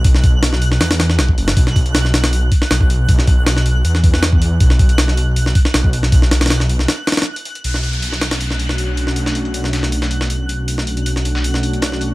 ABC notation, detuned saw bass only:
X:1
M:4/4
L:1/8
Q:1/4=158
K:Bm
V:1 name="Detuned saw bass" clef=bass
B,,,4 E,,2 B,,, F,,, | B,,,4- B,,, z B,,,2 | B,,,4 E,,4 | B,,,4- B,,, z B,,,2 |
B,,,4 z4 | B,,,8- | B,,,8- | B,,,8 |]